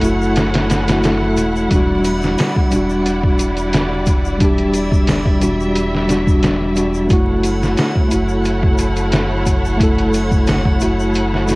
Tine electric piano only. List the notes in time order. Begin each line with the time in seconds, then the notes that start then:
Already playing: A3 E4 A4
0.02 A3 E4 F#4
0.88 A3 E4 F#4
1.04 A3 E4 A4
1.69 G3 D4
1.75 F#4
2.70 G3 D4
2.76 F#4
4.39 G3 D4
4.44 G4
5.40 G3 D4 F#4
6.08 G3 D4 F#4
6.76 G3 D4 F#4
7.07 A3 E4
7.13 F#4
8.08 A3 E4
8.14 F#4
9.77 A3 E4
9.83 A4
10.80 A3 E4 F#4
11.47 A3 E4 F#4